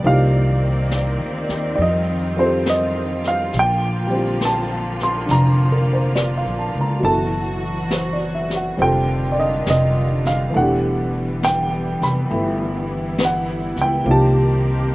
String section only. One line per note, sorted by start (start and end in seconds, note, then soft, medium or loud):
0.00 1.77 A#3 medium
0.00 1.74 D5 medium
0.04 3.50 D#3 medium
0.04 3.50 C4 medium
1.79 3.52 G3 medium
1.79 7.00 F4 medium
3.52 6.99 D3 medium
3.52 6.99 F3 medium
3.52 7.00 A#3 medium
7.02 8.76 E3 medium
7.02 8.76 F#3 medium
7.02 8.77 F#4 medium
8.78 12.27 D3 medium
8.78 10.53 D#3 medium
8.78 14.02 G3 medium
8.78 10.53 F4 medium
10.55 14.03 E3 medium
10.55 14.03 B3 medium
12.31 14.04 E4 medium
14.05 14.95 D#3 medium
14.05 14.95 A#3 medium
14.05 14.95 C4 medium
14.05 14.95 G4 medium